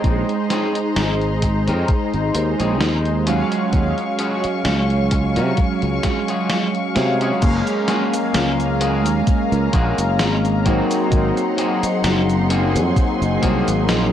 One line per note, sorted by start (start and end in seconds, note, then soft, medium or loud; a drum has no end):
0.00 0.03 G#3 medium
0.00 3.22 G#3 medium
0.00 0.33 C4 medium
0.00 0.34 C#4 medium
0.00 0.06 D#4 loud
0.00 0.34 D#4 medium
0.00 0.34 G#4 loud
0.00 3.23 G#4 medium
0.00 0.04 C5 medium
0.00 3.22 C5 medium
0.00 3.23 D#5 medium
0.00 3.24 A#5 medium
0.00 3.24 C6 medium
0.00 kick loud
0.04 0.23 A#1 medium
0.04 3.23 D#4 medium
0.04 closed hi-hat soft
0.29 closed hi-hat soft
0.50 0.76 C4 medium
0.50 0.76 C#4 medium
0.50 0.76 D#4 medium
0.50 0.76 G#4 medium
0.50 snare medium
0.50 closed hi-hat medium
0.75 closed hi-hat soft
0.96 1.69 G#1 medium
0.96 snare loud
0.96 closed hi-hat soft
1.21 closed hi-hat soft
1.42 muted clean electric guitar stroke medium
1.42 kick medium
1.42 closed hi-hat medium
1.67 1.83 F2 medium
1.67 1.89 C4 medium
1.67 1.89 C#4 medium
1.67 1.89 D#4 medium
1.67 1.89 A#4 medium
1.67 closed hi-hat soft
1.88 muted fretless electric bass stroke soft
1.88 kick loud
1.88 closed hi-hat soft
2.14 2.29 G#1 medium
2.14 closed hi-hat soft
2.34 2.53 D#2 medium
2.34 muted clean electric guitar stroke medium
2.34 closed hi-hat medium
2.59 2.81 A#1 medium
2.59 2.81 C4 medium
2.59 2.81 C#4 medium
2.59 2.81 D#4 medium
2.59 2.81 G#4 medium
2.59 closed hi-hat soft
2.81 3.42 D#2 medium
2.81 snare loud
2.81 closed hi-hat soft
3.05 closed hi-hat soft
3.27 3.68 F#3 medium
3.27 7.39 F#3 medium
3.27 3.68 G#3 medium
3.27 4.03 C#4 medium
3.27 3.69 C#4 medium
3.27 4.03 F4 medium
3.27 4.03 F#4 medium
3.27 4.03 G#4 loud
3.27 7.39 F5 medium
3.27 3.69 F5 loud
3.27 7.39 G#5 medium
3.27 7.39 C#6 medium
3.27 closed hi-hat medium
3.52 closed hi-hat soft
3.72 3.92 D#2 loud
3.72 6.91 F#3 medium
3.72 6.91 G#3 medium
3.72 6.92 C#4 medium
3.72 6.92 F5 medium
3.72 kick loud
3.72 closed hi-hat soft
3.98 closed hi-hat soft
4.19 4.44 C#4 medium
4.19 4.45 F4 medium
4.19 4.45 F#4 medium
4.19 4.45 G#4 medium
4.19 closed hi-hat medium
4.44 muted fretless electric bass stroke soft
4.44 closed hi-hat medium
4.65 5.38 C#2 medium
4.65 snare loud
4.65 closed hi-hat soft
4.90 closed hi-hat soft
5.11 muted clean electric guitar stroke medium
5.11 kick medium
5.11 closed hi-hat medium
5.36 5.52 C3 medium
5.36 5.58 C#4 medium
5.36 5.58 F4 medium
5.36 5.58 F#4 medium
5.36 5.58 A#4 medium
5.36 closed hi-hat soft
5.57 kick loud
5.57 closed hi-hat medium
5.82 5.98 C#2 medium
5.82 closed hi-hat soft
6.03 muted clean electric guitar stroke medium
6.03 kick medium
6.03 snare medium
6.03 closed hi-hat medium
6.28 6.50 C#4 medium
6.28 6.50 F4 medium
6.28 6.50 F#4 medium
6.28 6.51 G#4 medium
6.28 closed hi-hat medium
6.50 snare loud
6.50 closed hi-hat soft
6.75 closed hi-hat soft
6.95 7.31 C3 medium
6.95 7.37 F#3 medium
6.95 7.38 G#3 medium
6.95 7.38 C#5 medium
6.95 7.38 F5 loud
6.95 muted clean electric guitar stroke medium
6.95 snare medium
6.95 closed hi-hat medium
7.21 7.42 C#4 medium
7.21 7.43 F4 medium
7.21 7.43 F#4 medium
7.21 7.43 G#4 medium
7.21 closed hi-hat medium
7.42 7.61 F#1 medium
7.42 10.63 F#3 medium
7.42 10.60 G#3 medium
7.42 10.61 A#3 medium
7.42 10.61 C#4 medium
7.42 10.63 F5 medium
7.42 10.62 F5 medium
7.42 10.63 G#5 medium
7.42 12.47 A#5 medium
7.42 kick loud
7.42 closed hi-hat medium
7.42 crash loud
7.42 cabasa soft
7.67 closed hi-hat soft
7.67 cabasa soft
7.88 8.14 A#3 medium
7.88 8.14 F4 medium
7.88 8.14 F#4 medium
7.88 8.14 G#4 medium
7.88 snare medium
7.88 closed hi-hat medium
8.14 closed hi-hat medium
8.14 cabasa medium
8.34 9.06 C#2 medium
8.34 snare loud
8.34 closed hi-hat medium
8.34 cabasa soft
8.60 closed hi-hat soft
8.60 cabasa soft
8.80 9.06 A#3 medium
8.80 9.06 F4 medium
8.80 9.06 F#4 medium
8.80 9.06 G#4 medium
8.80 closed hi-hat loud
9.06 9.22 D#2 medium
9.06 closed hi-hat medium
9.06 cabasa medium
9.27 muted fretless electric bass stroke soft
9.27 kick loud
9.27 closed hi-hat medium
9.27 cabasa soft
9.52 9.68 C#2 medium
9.52 closed hi-hat soft
9.52 cabasa soft
9.73 9.92 A#1 medium
9.73 9.98 A#3 medium
9.73 9.99 F4 medium
9.73 9.99 F#4 medium
9.73 9.99 G#4 medium
9.73 kick loud
9.73 closed hi-hat loud
9.98 10.19 F#1 medium
9.98 closed hi-hat medium
9.98 cabasa medium
10.19 10.80 G#1 medium
10.19 snare loud
10.19 closed hi-hat medium
10.19 cabasa soft
10.45 closed hi-hat soft
10.45 cabasa soft
10.65 11.07 F#3 medium
10.65 11.41 A#3 medium
10.65 11.07 A#3 medium
10.65 11.41 C4 medium
10.65 11.07 C4 medium
10.65 11.07 D#4 loud
10.65 11.41 F#4 medium
10.65 14.12 G#4 medium
10.65 11.42 G#4 medium
10.65 14.12 F#5 medium
10.65 14.12 C6 medium
10.65 kick medium
10.65 closed hi-hat loud
10.91 closed hi-hat medium
10.91 cabasa medium
11.10 11.30 G#1 loud
11.10 14.12 F#3 medium
11.10 14.12 A#3 medium
11.10 14.12 C4 medium
11.10 14.12 D#4 medium
11.10 kick loud
11.10 closed hi-hat medium
11.10 cabasa soft
11.37 closed hi-hat soft
11.37 cabasa soft
11.57 11.83 A#3 medium
11.57 11.83 C4 medium
11.57 11.83 F#4 medium
11.57 11.84 G#4 medium
11.57 closed hi-hat medium
11.83 muted fretless electric bass stroke soft
11.83 closed hi-hat medium
11.83 cabasa medium
12.04 12.77 F#1 medium
12.04 snare loud
12.04 closed hi-hat medium
12.04 cabasa soft
12.30 closed hi-hat soft
12.30 cabasa soft
12.50 12.75 A#3 medium
12.50 12.76 C4 medium
12.50 12.76 F#4 medium
12.50 12.76 G#4 loud
12.50 14.12 G#5 medium
12.50 closed hi-hat medium
12.76 12.91 F2 loud
12.76 closed hi-hat medium
12.76 cabasa medium
12.96 kick loud
12.96 closed hi-hat medium
12.96 cabasa soft
13.22 13.37 F#1 medium
13.22 closed hi-hat soft
13.22 cabasa soft
13.42 13.61 C2 medium
13.42 13.68 A#3 medium
13.42 13.68 C4 medium
13.42 13.68 F#4 medium
13.42 13.68 G#4 loud
13.42 kick medium
13.42 closed hi-hat loud
13.68 13.89 G#1 medium
13.68 closed hi-hat medium
13.68 cabasa medium
13.89 14.12 A#1 medium
13.89 snare loud
13.89 closed hi-hat medium
13.89 cabasa soft